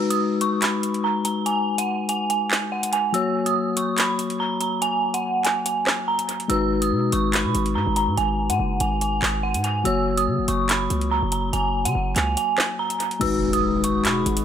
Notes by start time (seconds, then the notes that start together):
Already playing: G#3 D#4 F#4 B4
0.10 D#6, closed hi-hat
0.41 C#6, closed hi-hat
0.62 B5, clap, closed hi-hat
0.83 closed hi-hat
0.94 closed hi-hat
1.04 A#5
1.25 A#5, closed hi-hat
1.46 G#5, closed hi-hat
1.78 F#5, closed hi-hat
2.09 G#5, closed hi-hat
2.30 G#5, closed hi-hat
2.51 clap
2.72 F#5
2.83 closed hi-hat
2.93 G#5, closed hi-hat
3.13 F#3 A#3 F#4 C#5 E6, closed hi-hat
3.46 D#6, closed hi-hat
3.77 C#6, closed hi-hat
3.98 B5, clap, closed hi-hat
4.19 closed hi-hat
4.30 closed hi-hat
4.40 A#5
4.61 A#5, closed hi-hat
4.82 G#5, closed hi-hat
5.14 F#5, closed hi-hat
5.45 G#5, clap, closed hi-hat
5.66 G#5, closed hi-hat
5.87 cross-stick, clap
6.08 A#5
6.19 closed hi-hat
6.29 closed hi-hat
6.40 closed hi-hat
6.48 G#1 G#3 D#4 F#4 B4 E6, closed hi-hat
6.82 D#6, closed hi-hat
6.92 B2
7.12 G#1 C#6, closed hi-hat
7.33 B5, clap, closed hi-hat
7.45 B2
7.55 G#1, closed hi-hat
7.66 closed hi-hat
7.75 G#2 A#5
7.87 G#1
7.96 A#5, closed hi-hat
8.08 G#2
8.17 G#1 G#5, closed hi-hat
8.50 G#2 F#5, closed hi-hat
8.60 F#1
8.80 G#1 G#5, closed hi-hat
9.01 G#5, closed hi-hat
9.22 G#1, clap
9.43 F#5
9.54 G#2, closed hi-hat
9.64 G#5, closed hi-hat
9.84 F#1 F#3 A#3 F#4 C#5 E6, closed hi-hat
10.17 D#6, closed hi-hat
10.27 C#3
10.39 F#1
10.48 F#1 C#6, closed hi-hat
10.69 B5, clap, closed hi-hat
10.90 C#2, closed hi-hat
11.01 closed hi-hat
11.11 A#5
11.22 F#1
11.32 A#5, closed hi-hat
11.53 F#1 G#5, closed hi-hat
11.85 C#3 F#5, closed hi-hat
11.95 F#1
12.16 C#2 G#5, clap, closed hi-hat
12.37 G#5, closed hi-hat
12.58 cross-stick, clap
12.79 A#5
12.90 closed hi-hat
13.00 closed hi-hat
13.11 closed hi-hat
13.20 G#1 G#3 D#4 F#4 B4 E6, closed hi-hat, crash, impact
13.53 D#6, closed hi-hat
13.84 C#6, closed hi-hat
14.05 B2 B5, clap, closed hi-hat
14.26 G#1, closed hi-hat
14.37 closed hi-hat